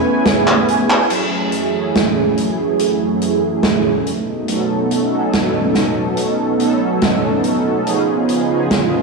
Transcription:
Already playing: analog polysynth A3 B3 C#4 E4 G#4 G#5, clean electric guitar B3 C#4 B4, analog synth pad B4 G#5 C#6
0.26 snare, closed hi-hat
0.47 clap
0.68 muted clean electric guitar stroke, closed hi-hat
0.90 muted clean electric guitar stroke, clap
1.09 analog synth pad F#2 E3 A3 G#4, analog polysynth F#3 A3 C#4 E4 G#4, closed hi-hat, crash
1.52 closed hi-hat
1.73 analog polysynth F#3 A3 C#4 E4 G#4
1.95 snare, closed hi-hat
2.37 closed hi-hat
2.79 closed hi-hat
3.22 closed hi-hat
3.63 snare, closed hi-hat
4.05 analog synth pad B2 D#4, closed hi-hat
4.48 analog polysynth F#3 B3 C#4 D#4 A4, closed hi-hat
4.91 closed hi-hat
5.11 analog polysynth F#3 B3 C#4 D#4 A4
5.33 snare, closed hi-hat
5.75 snare, closed hi-hat
6.17 closed hi-hat
6.58 analog polysynth F#3 B3 C#4 D#4 A4, closed hi-hat
7.02 snare, closed hi-hat
7.44 closed hi-hat
7.86 analog synth pad C#3 B3 F4, analog polysynth F3 B3 C#4 D#4 G#4, closed hi-hat
8.29 closed hi-hat
8.49 analog polysynth F3 B3 C#4 D#4 G#4
8.71 snare, closed hi-hat

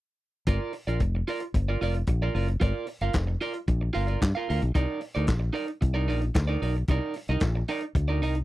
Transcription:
0.47 fingered electric bass G1, clean electric guitar F4 A#4 D5, kick, closed hi-hat
0.73 muted clean electric guitar stroke, open hi-hat
0.87 fingered electric bass A#1, clean electric guitar F4 A#4 D5, closed hi-hat
1.00 fingered electric bass F1, muted clean electric guitar stroke, kick, closed hi-hat
1.15 muted clean electric guitar stroke
1.28 clean electric guitar F4 A#4 D5, open hi-hat
1.40 muted clean electric guitar stroke, closed hi-hat
1.54 fingered electric bass G1, muted clean electric guitar stroke, kick, closed hi-hat
1.68 clean electric guitar F4 A#4 D5
1.81 fingered electric bass F1, clean electric guitar F4 A#4 D5, open hi-hat
1.94 muted clean electric guitar stroke, closed hi-hat
2.07 fingered electric bass A#1, muted clean electric guitar stroke, kick, closed hi-hat
2.22 clean electric guitar F4 A#4 D5
2.35 fingered electric bass F#1, clean electric guitar F4 A#4 D5, open hi-hat
2.48 muted clean electric guitar stroke, closed hi-hat
2.60 fingered electric bass G1, clean electric guitar F4 A#4 D5, kick, closed hi-hat
2.86 muted clean electric guitar stroke, open hi-hat
3.01 fingered electric bass G1, clean electric guitar F4 A#4 F5, closed hi-hat
3.13 fingered electric bass F1, muted clean electric guitar stroke, kick, snare, clap, closed hi-hat
3.27 muted clean electric guitar stroke
3.41 clean electric guitar F4 A#4 D5, open hi-hat
3.53 muted clean electric guitar stroke, closed hi-hat
3.68 fingered electric bass A#1, muted clean electric guitar stroke, kick, closed hi-hat
3.81 muted clean electric guitar stroke
3.93 fingered electric bass G1, clean electric guitar F4 A#4 F5, open hi-hat
4.07 clean electric guitar F4 A#4 D5, closed hi-hat
4.21 fingered electric bass G2, muted clean electric guitar stroke, kick, snare, clap, closed hi-hat
4.35 clean electric guitar F4 A#4 F5
4.49 fingered electric bass D2, clean electric guitar F4 A#4 F5, open hi-hat
4.62 fingered electric bass B1, muted clean electric guitar stroke, closed hi-hat
4.75 fingered electric bass C2, clean electric guitar D#4 A#4 D5, kick, closed hi-hat
5.01 muted clean electric guitar stroke, open hi-hat
5.15 fingered electric bass D2, clean electric guitar D#4 A#4 D5, closed hi-hat
5.27 fingered electric bass A#1, muted clean electric guitar stroke, kick, snare, clap, closed hi-hat
5.40 muted clean electric guitar stroke
5.53 clean electric guitar D#4 A#4 D5, open hi-hat
5.67 muted clean electric guitar stroke, closed hi-hat
5.81 fingered electric bass C2, muted clean electric guitar stroke, kick, closed hi-hat
5.94 clean electric guitar D#4 A#4 D5
6.08 fingered electric bass A#1, clean electric guitar D#4 A#4 D5, open hi-hat
6.21 muted clean electric guitar stroke, closed hi-hat
6.34 fingered electric bass D2, muted clean electric guitar stroke, kick, snare, clap, closed hi-hat
6.47 clean electric guitar D#4 A#4 D5
6.62 fingered electric bass B1, clean electric guitar D#4 A#4 D5, open hi-hat
6.75 muted clean electric guitar stroke, closed hi-hat
6.88 fingered electric bass C2, clean electric guitar D#4 A#4 D5, kick, closed hi-hat
7.14 muted clean electric guitar stroke, open hi-hat
7.28 fingered electric bass C2, clean electric guitar D#4 A#4 D#5, closed hi-hat
7.40 fingered electric bass A#1, muted clean electric guitar stroke, kick, snare, clap, closed hi-hat
7.55 muted clean electric guitar stroke
7.68 clean electric guitar D#4 A#4 D5, open hi-hat
7.81 muted clean electric guitar stroke, closed hi-hat
7.95 fingered electric bass D2, muted clean electric guitar stroke, kick, closed hi-hat
8.08 clean electric guitar D#4 A#4 D5
8.21 fingered electric bass C2, clean electric guitar D#4 A#4 D#5, open hi-hat
8.35 muted clean electric guitar stroke, closed hi-hat

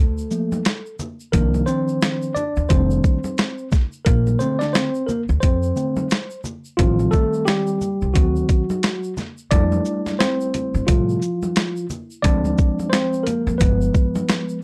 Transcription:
Already playing: upright bass D2, tine electric piano A3 A4
0.18 shaker
0.31 tine electric piano F3 A3 A#3, shaker
0.52 high conga, shaker
0.65 snare, closed hi-hat, shaker
0.86 shaker
0.99 low conga, shaker
1.20 shaker
1.32 upright bass C2, tine electric piano D#3 F3 A#3 D4 A#4, kick, closed hi-hat, shaker
1.54 high conga, shaker
1.66 tine electric piano C4 C5, shaker
1.88 shaker
2.02 snare, closed hi-hat, shaker
2.22 shaker
2.35 tine electric piano D4 D5, low conga, shaker
2.56 upright bass D#2, shaker
2.69 upright bass F1, tine electric piano D#3 G3 A3 C4 D4 C5, kick, closed hi-hat, shaker
2.91 shaker
3.04 kick, shaker
3.24 high conga, shaker
3.38 snare, closed hi-hat, shaker
3.58 shaker
3.72 kick, snare, low conga, shaker
3.92 shaker
4.05 upright bass A#1, tine electric piano A#3 A#4, kick, closed hi-hat, shaker
4.27 high conga, shaker
4.39 tine electric piano D3 A3 C4 C5, shaker
4.59 tine electric piano D4 D5, snare, shaker
4.73 tine electric piano C4 C5, snare, closed hi-hat, shaker
4.95 shaker
5.07 tine electric piano A#3 A#4, low conga, shaker
5.29 upright bass D2, shaker
5.40 upright bass F2, tine electric piano C4 C5, kick, closed hi-hat, shaker
5.63 shaker
5.76 tine electric piano D3 A3 C4, shaker
5.96 high conga, shaker
6.10 snare, closed hi-hat, shaker
6.30 shaker
6.44 low conga, shaker
6.65 shaker
6.77 upright bass A1, tine electric piano D#3 F3 G3 C4 F4, kick, closed hi-hat, shaker
6.99 high conga, shaker
7.11 tine electric piano A3 A4, kick, shaker
7.33 shaker
7.45 tine electric piano G3 G4, snare, closed hi-hat, shaker
7.67 shaker
7.81 low conga, shaker
8.01 upright bass C2, shaker
8.14 upright bass D2, tine electric piano D#3 F#3 C4 F#4, kick, closed hi-hat, shaker
8.36 shaker
8.49 kick, closed hi-hat, shaker
8.70 high conga, shaker
8.83 snare, closed hi-hat, shaker
9.03 shaker
9.17 snare, low conga, shaker
9.38 shaker
9.51 upright bass F2, tine electric piano G3 A3 D4 E4 D5, kick, closed hi-hat, shaker
9.72 high conga, shaker
9.85 shaker
10.06 snare, high conga, shaker
10.19 tine electric piano C4 C5, snare, closed hi-hat, shaker
10.41 shaker
10.54 closed hi-hat, low conga, shaker
10.74 upright bass G2, shaker
10.87 upright bass A2, tine electric piano C3 F3 G3 A3 F4, kick, closed hi-hat, shaker
11.09 shaker
11.22 shaker
11.43 high conga, shaker
11.56 snare, closed hi-hat, shaker
11.76 shaker
11.90 low conga, shaker
12.11 shaker
12.22 upright bass D2, tine electric piano F3 G#3 C4 D4 D5, kick, closed hi-hat, shaker
12.45 high conga, shaker
12.58 kick, shaker
12.79 high conga, shaker
12.90 tine electric piano C4 C5, snare, shaker
12.94 closed hi-hat
13.13 shaker
13.23 tine electric piano A#3 A#4, closed hi-hat, low conga, shaker
13.47 upright bass F2, shaker
13.58 upright bass G1, tine electric piano F3 G#3 B3 B4, kick, closed hi-hat, shaker
13.82 shaker
13.94 kick, shaker
14.15 high conga, shaker
14.29 snare, closed hi-hat, shaker
14.49 shaker

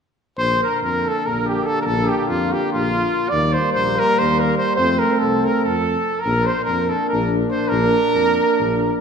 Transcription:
0.38 tuba A#1, euphonium D3, trombone A#3, cornet C5, trumpet C5
0.62 trumpet A#4, cornet A#4
0.82 tuba F2, trumpet A#4, cornet A#4
1.05 trumpet A4, cornet A4
1.26 tuba A#1, trumpet A#4, cornet A#4
1.46 trumpet G4, cornet G4
1.63 trumpet A4, cornet A4
1.80 trumpet A4 A#4, cornet A#4
1.86 tuba A#1, cornet A4
2.07 trumpet G4, cornet G4
2.26 tuba F2, trumpet F4, cornet F4
2.51 trumpet G4, cornet G4
2.72 tuba A#1, trumpet F4, cornet F4
3.29 tuba D#2, trombone A#3, cornet D5, trumpet D5
3.33 euphonium G3
3.52 trumpet C5, cornet C5
3.72 tuba A#1, trumpet C5, cornet C5
3.96 trumpet A#4, cornet A#4
4.16 trumpet C5, cornet C5
4.21 tuba D#2
4.39 trumpet A#4, cornet A#4
4.57 cornet C5, trumpet C5
4.76 tuba F2, euphonium A3, trombone C4, trumpet C5, cornet C5
4.99 trumpet A#4, cornet A#4
5.19 tuba C2, trumpet A4, cornet A4
5.44 trumpet A#4, cornet A#4
5.64 tuba F2, trumpet A4, cornet A4
6.20 trumpet A#4, cornet A#4
6.24 tuba A#1, euphonium A#3, trombone D4
6.45 trumpet C5, cornet C5
6.63 trumpet A#4, cornet A#4
6.68 tuba F2
6.89 cornet A4, trumpet A4
7.09 tuba A#1, trumpet A#4, cornet A#4
7.50 trumpet C5, cornet C5
7.68 tuba A#1, trumpet A#4, cornet A#4
8.15 tuba F2
8.60 tuba A#1

